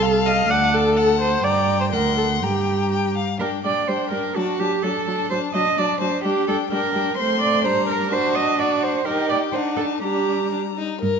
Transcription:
Already playing: cello C2, viola A4
0.02 violin F5 A5
0.26 violin D#5, viola F5
0.49 cello D2, violin D5 A5, viola F#5
0.74 viola A4
0.97 violin F#5 A5
1.21 viola C5
1.44 cello G2, viola D5, violin G5 A#5
1.81 viola C5
1.92 cello D2, viola A#4, violin F#5 C6
2.18 viola A4
2.42 cello G2, viola G4, violin G5 A#5
2.92 violin G5
3.16 violin F5
3.40 viola G3, violin D4 G5, cello A#4
3.64 viola G3, violin D4 G5, cello D5
3.88 viola G3, violin D4 G5, cello C5
4.11 viola G3, violin D4 G5, cello A#4
4.36 viola F#3, violin D4 A5, cello F#4
4.59 viola F#3, violin D4 A5, cello G4
4.83 viola F#3, violin D4 A5, cello A4
5.06 viola F#3, violin D4 A5
5.30 viola F#3, violin D4 A5, cello C5
5.54 viola F#3, violin D4 A5, cello D#5
5.77 viola F#3, violin D4 A5, cello D5
6.01 viola F#3, violin D4 A5, cello C5
6.24 viola G3, violin D4 G5, cello G4
6.47 viola G3, violin D4 G5, cello A4
6.71 viola G3, violin D4 G5, cello A#4
6.93 viola G3, violin D4 G5
7.17 viola A3, violin C4 C6, cello C5
7.42 cello D5
7.64 viola G3, violin D4 A#5, cello C5
7.89 cello A#4
8.11 viola D4, violin F#4 A5, cello C5
8.35 cello D#5
8.58 violin F#4 F#5, cello D5
8.83 cello C5
9.05 viola D#4, violin G4 G5, cello A#4
9.29 cello D5
9.52 viola D4, violin D#4 F#5, cello C5
9.77 cello A4, violin A5
10.02 viola G3, violin D4 A#5, cello G4
10.53 violin D4
10.77 violin D#4
11.01 cello G2, violin A#4

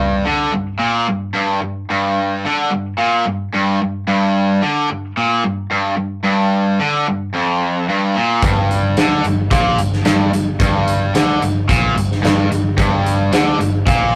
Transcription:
Already playing: overdriven electric guitar G2
0.26 overdriven electric guitar D3
0.53 overdriven electric guitar G2
0.79 overdriven electric guitar A#2
1.08 overdriven electric guitar G2
1.34 overdriven electric guitar G2
1.62 overdriven electric guitar G2
1.90 overdriven electric guitar G2
2.46 overdriven electric guitar D3
2.71 overdriven electric guitar G2
2.98 overdriven electric guitar A#2
3.25 overdriven electric guitar G2
3.54 overdriven electric guitar G2
3.82 overdriven electric guitar G2
4.08 overdriven electric guitar G2
4.62 overdriven electric guitar D3
4.90 overdriven electric guitar G2
5.17 overdriven electric guitar A#2
5.44 overdriven electric guitar G2
5.71 overdriven electric guitar G2
5.97 overdriven electric guitar G2
6.24 overdriven electric guitar G2
6.80 overdriven electric guitar D3
7.08 overdriven electric guitar G2
7.34 overdriven electric guitar F2
7.89 overdriven electric guitar G2
8.16 overdriven electric guitar A#2
8.42 picked electric bass G1, overdriven electric guitar G2, kick, closed hi-hat
8.71 closed hi-hat
8.96 picked electric bass D2, overdriven electric guitar D3, snare, closed hi-hat
9.24 picked electric bass G1, overdriven electric guitar G2, closed hi-hat
9.51 picked electric bass A#1, overdriven electric guitar A#2, kick, closed hi-hat
9.78 picked electric bass G1, overdriven electric guitar G2, closed hi-hat
9.93 snare
10.05 picked electric bass G1, overdriven electric guitar G2, snare, closed hi-hat
10.33 picked electric bass G1, overdriven electric guitar G2, closed hi-hat
10.60 picked electric bass G1, overdriven electric guitar G2, kick, closed hi-hat
10.88 closed hi-hat
11.14 picked electric bass D2, overdriven electric guitar D3, snare, closed hi-hat
11.42 picked electric bass G1, overdriven electric guitar G2, closed hi-hat
11.69 picked electric bass A#1, overdriven electric guitar A#2, kick, closed hi-hat
11.95 picked electric bass G1, overdriven electric guitar G2, closed hi-hat
12.11 snare
12.23 picked electric bass G1, overdriven electric guitar G2, snare, closed hi-hat
12.51 picked electric bass G1, overdriven electric guitar G2, closed hi-hat
12.77 picked electric bass G1, overdriven electric guitar G2, kick, closed hi-hat
13.06 closed hi-hat
13.32 picked electric bass D2, overdriven electric guitar D3, snare, closed hi-hat
13.59 picked electric bass G1, overdriven electric guitar G2, closed hi-hat
13.87 picked electric bass A#1, overdriven electric guitar A#2, kick, closed hi-hat

